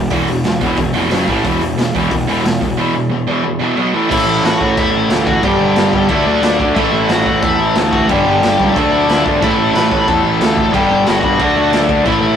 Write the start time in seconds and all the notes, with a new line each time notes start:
Already playing: B2
0.10 E1 E2 B2 E3, kick, open hi-hat
0.28 E1 E2 B2, open hi-hat
0.44 E1 E2 B2, snare, open hi-hat
0.61 E1 E2 B2 E3, kick, open hi-hat
0.76 E1 E2 B2, kick, open hi-hat
0.81 E2 B2
0.94 F1 E2 B2 E3, open hi-hat
1.11 F#1 F#2 C#3 F#3, snare, open hi-hat
1.28 A1 A2 E3 A3, kick, open hi-hat
1.45 E1 E2 B2 E3, kick, open hi-hat
1.60 E1 E2 B2, open hi-hat
1.77 E1 E2 B2, snare, open hi-hat
1.95 E1 E2 B2 E3, kick, open hi-hat
2.11 E1 E2 B2, kick, open hi-hat
2.27 E1 E2 B2 E3, open hi-hat
2.44 E1 E2 B2, snare, open hi-hat
2.61 E1 E2 B2, kick, open hi-hat
2.77 E2 B2 E3
2.94 E2 B2
3.11 E2 B2
3.28 E2 B2 E3
3.44 E2 B2
3.61 E2 B2 E3
3.78 B2 F#3 B3
3.93 A2 E3 A3
4.09 A1 A2 E3 A3 C#4 E4 E5, kick, crash
4.27 A1 A2 E3 A3 C#4 E4
4.44 A1 A2 E3 A3 C#4 E4 F#4 F#5, snare, crash
4.59 A2 E3 A3 C#4 E4, kick
4.76 E2 A2 E3 A3 C#4 E4 E5, kick, crash
4.93 A1 A2 E3 A3 C#4 E4
5.09 D2 A2 E3 A3 C#4 E4, snare, crash
5.26 A2 E3 A3 C#4 E4 F#4 F#5, kick
5.42 G1 G2 D3 G3 B3 D4 G4 G5, kick, crash
5.59 G1 G2 D3 G3 B3 D4
5.76 G1 G2 D3 G3 B3 D4, snare, crash
5.91 G1 G2 D3 G3 B3 D4, kick
6.09 D2 D3 F#3 A3 D4 E4 E5, kick, crash
6.13 D4
6.25 D2 D3 F#3 A3 D4 D5
6.42 D2 D3 F#3 A3 D4, snare, crash
6.59 D2 D3 F#3 A3 D4, kick
6.75 A1 A2 E3 A3 C#4 E4 E5, kick, crash
6.79 A3
6.93 A1 A2 E3 A3 C#4 E4
7.09 A1 A2 E3 A3 C#4 E4 F#4 F#5, snare, crash
7.24 A2 E3 A3 C#4 E4, kick
7.30 A2
7.41 E2 A2 E3 A3 C#4 E4 E5, kick, crash
7.58 A1 A2 E3 A3 C#4 E4
7.75 D2 A2 E3 A3 C#4 E4, snare, crash
7.92 A2 E3 A3 C#4 E4 F#4 F#5, kick
8.07 G1 G2 D3 G3 B3 D4 G4 G5, kick, crash
8.12 G3
8.25 G1 G2 D3 G3 B3 D4
8.40 G1 G2 D3 G3 B3 D4, snare, crash
8.57 C#2 G2 D3 G3 B3 D4, kick
8.61 G2
8.73 D2 D3 F#3 A3 D4 A4 A5, kick
8.77 crash
8.91 D2 D3 F#3 A3 D4 E4 E5
9.07 D2 D3 F#3 A3 D4, snare, crash
9.24 G1 D3 F#3 A3 D4, kick
9.40 A1 A2 E3 A3 C#4 E4 E5, kick, crash
9.58 A1 A2 E3 A3 C#4 E4
9.74 A1 A2 E3 A3 C#4 E4 B4 B5, snare, crash
9.89 A2 E3 A3 C#4 E4, kick
10.08 E2 A2 E3 A3 C#4 E4 A4 A5, kick, crash
10.24 A1 A2 E3 A3 C#4 E4
10.41 D2 A2 E3 A3 C#4 E4, snare, crash
10.57 A2 E3 A3 C#4 E4, kick
10.70 G2 D3 G3 B3 G4 G5, kick
10.74 G1 D4, crash
10.90 G1 G2 D3 G3 B3 D4
11.06 G1 G2 D3 G3 B3 D4 F#4 F#5, snare, crash
11.21 G1 D3 G3 B3 D4, kick
11.25 G2
11.39 D2 D3 F#3 A3 D4, kick, crash
11.56 D2 D3 F#3 A3 D4
11.72 D2 D3 F#3 A3 D4, snare, crash
11.88 D2 D3 F#3 A3 D4, kick
12.05 A1 A2 E3 A3 C#4 E4 E5, kick, crash
12.09 A3
12.21 A1 A2 E3 A3 C#4 E4